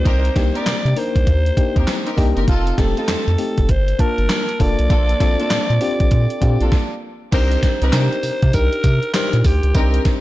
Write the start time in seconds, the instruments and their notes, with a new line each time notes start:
Already playing: alto saxophone C5
0.05 analog synth bass C2, string section C4 D#4 G4 A#4, kick, closed hi-hat
0.25 closed hi-hat
0.35 analog synth bass C2, fm electric piano A#3 D4 D#4 G4, kick, snare, closed hi-hat
0.54 string section C4 D#4 G4 A#4, alto saxophone D5, closed hi-hat
0.66 analog synth bass C3, snare, clap, closed hi-hat
0.85 analog synth bass C3, closed hi-hat
0.96 fm electric piano A#3 D4 D#4 A#4, alto saxophone C5, open hi-hat
1.16 analog synth bass C2, kick, closed hi-hat
1.27 analog synth bass D#2, kick, closed hi-hat
1.46 closed hi-hat
1.57 fm electric piano A#3 D4 D#4 G4, kick, closed hi-hat
1.76 analog synth bass D#2, string section C4 D#4 G4 A#4, kick, closed hi-hat
1.88 snare, clap, closed hi-hat
2.06 string section C4 D#4 G4 A#4, closed hi-hat
2.17 analog synth bass C2, fm electric piano A#3 D4 D#4 G4, kick, open hi-hat
2.36 analog synth bass F#1, string section C4 D#4 G4 A#4, closed hi-hat
2.47 analog synth bass F1, string section C4 D#4 F4 A4, alto saxophone F4, kick, closed hi-hat
2.67 closed hi-hat
2.77 analog synth bass F1, fm electric piano A3 C4 D#4 G4, alto saxophone A4, kick, snare, closed hi-hat
2.97 string section C4 D#4 F4 A4, alto saxophone A4, closed hi-hat
3.08 analog synth bass F2, snare, clap, closed hi-hat
3.28 analog synth bass F2, closed hi-hat
3.38 fm electric piano A3 C4 D#4 G4, open hi-hat
3.58 analog synth bass F1, kick, closed hi-hat
3.69 analog synth bass G1, alto saxophone C5, kick, closed hi-hat
3.88 closed hi-hat
3.99 fm electric piano A#3 D4 F4 A5, alto saxophone A#4, kick, closed hi-hat
4.18 analog synth bass G1, closed hi-hat
4.29 snare, clap, closed hi-hat
4.49 closed hi-hat
4.59 analog synth bass F1, fm electric piano A#3 D4 F4 A4, alto saxophone D5, kick, open hi-hat
4.79 analog synth bass B1, closed hi-hat
4.90 analog synth bass A#1, string section A#3 D4 F4 A4, kick, closed hi-hat
5.09 closed hi-hat
5.20 analog synth bass A#1, fm electric piano C4 D4 F4 A4, kick, snare, closed hi-hat
5.39 string section A#3 D4 F4 A4, closed hi-hat
5.50 analog synth bass A#2, snare, clap, closed hi-hat
5.70 analog synth bass A#2, closed hi-hat
5.80 fm electric piano C4 D4 F4 G4, open hi-hat
6.00 analog synth bass A#1, kick, closed hi-hat
6.11 analog synth bass A#2, kick, closed hi-hat
6.30 closed hi-hat
6.41 analog synth bass A#2, fm electric piano C4 D4 F4 G4, kick, closed hi-hat
6.61 analog synth bass A#1, string section A#3 D4 F4 A4, closed hi-hat
6.72 kick, snare
7.32 analog synth bass C2, string section C4 D#4 G4 A#4, fm electric piano D4 D#4 G4 A#4, alto saxophone C5, kick, closed hi-hat, crash, tambourine
7.52 closed hi-hat
7.63 kick, snare, closed hi-hat
7.82 analog synth bass C2, string section C4 D#4 G4 A#4, alto saxophone C5, closed hi-hat
7.92 analog synth bass C3, fm electric piano D4 D#4 G4 A#4, snare, clap, closed hi-hat, tambourine
8.13 closed hi-hat
8.23 analog synth bass C3, open hi-hat, tambourine
8.42 analog synth bass C3, kick, closed hi-hat
8.53 analog synth bass C2, fm electric piano D4 D#4 G4 A#4, alto saxophone A#4, kick, closed hi-hat, tambourine
8.72 closed hi-hat
8.84 analog synth bass C3, kick, closed hi-hat, tambourine
9.03 closed hi-hat
9.14 fm electric piano D4 D#4 G4 C5, alto saxophone A#4, snare, clap, closed hi-hat, tambourine
9.33 analog synth bass A#2, closed hi-hat
9.44 analog synth bass D2, alto saxophone G4, kick, open hi-hat, tambourine
9.63 analog synth bass C#2, closed hi-hat
9.74 analog synth bass C2, string section C4 D#4 G4 A#4, fm electric piano D4 D#4 G4 A#4, kick, closed hi-hat, tambourine
9.94 closed hi-hat
10.05 kick, snare, closed hi-hat